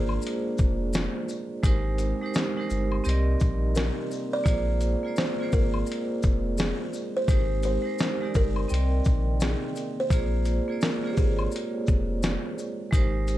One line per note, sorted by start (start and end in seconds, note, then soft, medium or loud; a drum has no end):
0.00 0.19 G#1 medium
0.00 3.01 G#3 medium
0.00 1.61 A#3 medium
0.00 1.66 A#3 medium
0.00 1.61 D4 medium
0.00 1.66 F4 medium
0.00 0.90 G#4 medium
0.00 1.66 G#4 medium
0.00 1.66 C5 medium
0.00 1.66 D5 medium
0.09 high woodblock medium
0.22 maracas medium
0.26 closed hi-hat medium
0.57 1.08 F1 loud
0.57 kick medium
0.57 shaker soft
0.57 maracas medium
0.93 snare loud
0.93 closed hi-hat medium
0.93 maracas medium
1.29 maracas medium
1.29 shaker soft
1.63 2.13 G#1 loud
1.63 1.98 G#3 loud
1.63 3.04 C4 medium
1.63 1.99 D#4 medium
1.63 3.04 G4 medium
1.63 1.99 G4 medium
1.63 2.00 A#4 medium
1.63 kick loud
1.63 closed hi-hat medium
1.63 maracas medium
1.67 2.00 C5 loud
1.98 closed hi-hat soft
1.98 shaker soft
1.98 maracas soft
2.21 2.41 G#3 medium
2.21 2.42 D#4 medium
2.21 2.42 G4 medium
2.21 2.43 A#4 medium
2.26 2.43 C5 medium
2.34 snare loud
2.34 maracas medium
2.38 closed hi-hat medium
2.56 3.05 G#3 medium
2.56 3.06 D#4 medium
2.56 3.04 G4 medium
2.56 3.05 A#4 medium
2.61 3.07 C5 loud
2.70 3.01 G1 medium
2.70 shaker soft
2.70 maracas soft
2.92 high woodblock medium
3.04 3.36 C2 loud
3.04 4.45 C3 medium
3.04 4.44 G3 medium
3.04 7.24 A#3 medium
3.04 4.19 C4 loud
3.04 7.24 C4 medium
3.04 4.45 D#4 medium
3.04 4.20 G4 medium
3.04 4.20 A#4 medium
3.04 4.21 D5 medium
3.04 maracas medium
3.08 4.21 D#5 loud
3.08 closed hi-hat medium
3.40 3.90 A#1 medium
3.40 kick medium
3.40 shaker soft
3.40 maracas soft
3.75 4.35 A#4 medium
3.75 snare loud
3.75 closed hi-hat medium
3.75 maracas medium
4.11 maracas soft
4.11 shaker soft
4.33 5.20 D5 loud
4.44 4.96 A#1 medium
4.44 8.65 G#3 medium
4.44 4.80 A#3 medium
4.44 4.80 F4 medium
4.44 4.81 G#4 medium
4.44 4.81 C5 medium
4.44 kick loud
4.44 maracas medium
4.48 4.82 D5 medium
4.48 closed hi-hat medium
4.81 closed hi-hat soft
4.81 maracas soft
4.81 shaker soft
5.03 5.23 A#3 medium
5.03 5.24 F4 medium
5.03 5.24 G#4 medium
5.03 5.25 C5 medium
5.08 5.26 D5 medium
5.16 5.54 C5 medium
5.16 snare loud
5.16 maracas medium
5.21 closed hi-hat medium
5.39 6.28 A#3 medium
5.39 6.28 F4 medium
5.39 6.29 G#4 medium
5.39 6.29 C5 medium
5.44 6.30 D5 medium
5.52 5.83 G#1 medium
5.52 6.62 A#4 loud
5.52 kick medium
5.52 maracas soft
5.52 shaker medium
5.74 high woodblock medium
5.87 maracas medium
5.92 closed hi-hat medium
6.22 6.73 F1 medium
6.22 kick medium
6.22 shaker soft
6.22 maracas medium
6.58 7.17 G#4 medium
6.58 snare loud
6.58 closed hi-hat medium
6.58 maracas medium
6.93 maracas medium
6.93 shaker soft
7.17 7.64 C5 loud
7.28 7.78 G#1 loud
7.28 7.63 G#3 medium
7.28 8.68 C4 medium
7.28 7.64 D#4 medium
7.28 8.68 G4 loud
7.28 7.64 G4 medium
7.28 7.65 A#4 medium
7.28 kick loud
7.28 closed hi-hat medium
7.28 maracas medium
7.33 7.65 C5 medium
7.63 8.37 C5 medium
7.63 closed hi-hat soft
7.63 maracas soft
7.63 shaker soft
7.82 8.04 G#3 medium
7.82 8.04 D#4 medium
7.82 8.05 G4 medium
7.82 8.06 A#4 medium
7.87 8.06 C5 medium
7.99 snare loud
7.99 maracas medium
8.03 closed hi-hat medium
8.21 8.70 G#3 medium
8.21 8.70 D#4 medium
8.21 8.71 G4 medium
8.21 8.69 A#4 medium
8.25 8.71 D5 medium
8.34 8.66 G1 medium
8.34 9.37 A#4 loud
8.34 kick medium
8.34 maracas soft
8.34 shaker medium
8.56 high woodblock medium
8.69 9.01 C2 loud
8.69 10.10 C3 medium
8.69 10.09 D#3 medium
8.69 12.89 A#3 medium
8.69 9.84 C4 medium
8.69 12.89 C4 medium
8.69 10.10 D#4 medium
8.69 9.85 A#4 medium
8.69 9.85 D5 medium
8.69 9.84 G5 medium
8.69 maracas medium
8.73 9.86 D#5 medium
8.73 closed hi-hat medium
9.05 9.55 A#1 medium
9.05 kick medium
9.05 shaker soft
9.05 maracas soft
9.40 10.00 G#4 medium
9.40 snare loud
9.40 closed hi-hat medium
9.40 maracas medium
9.76 closed hi-hat soft
9.76 maracas soft
9.76 shaker soft
10.00 10.85 C5 loud
10.10 10.60 A#1 loud
10.10 13.38 G#3 medium
10.10 10.46 A#3 medium
10.10 10.47 F4 medium
10.10 10.47 G#4 medium
10.10 kick loud
10.10 closed hi-hat medium
10.10 maracas medium
10.15 10.48 C5 medium
10.15 10.48 D5 medium
10.45 closed hi-hat soft
10.45 maracas soft
10.45 shaker soft
10.68 10.88 A#3 medium
10.68 10.89 F4 medium
10.68 10.89 G#4 medium
10.68 10.90 C5 medium
10.72 10.90 D5 medium
10.81 10.97 A#4 medium
10.81 snare loud
10.81 maracas medium
10.85 closed hi-hat medium
11.04 11.92 A#3 medium
11.04 11.93 F4 medium
11.04 11.93 G#4 medium
11.04 11.94 C5 medium
11.08 11.11 C#5 medium
11.13 11.17 G4 medium
11.13 11.97 D5 medium
11.17 11.48 G#1 medium
11.17 12.20 G#4 medium
11.17 kick medium
11.17 shaker soft
11.17 maracas soft
11.39 high woodblock medium
11.52 maracas medium
11.56 closed hi-hat medium
11.87 12.37 F1 medium
11.87 kick medium
11.87 shaker soft
11.87 maracas soft
12.23 snare loud
12.23 closed hi-hat medium
12.23 maracas medium
12.58 maracas medium
12.58 shaker soft
12.91 13.38 G#1 loud
12.91 13.27 G#3 loud
12.91 13.38 C4 medium
12.91 13.27 D#4 medium
12.91 13.28 G4 medium
12.91 13.38 G4 medium
12.91 13.28 A#4 medium
12.91 kick loud
12.91 closed hi-hat medium
12.91 maracas medium
12.96 13.29 C5 loud
13.28 closed hi-hat soft
13.28 maracas soft
13.28 shaker soft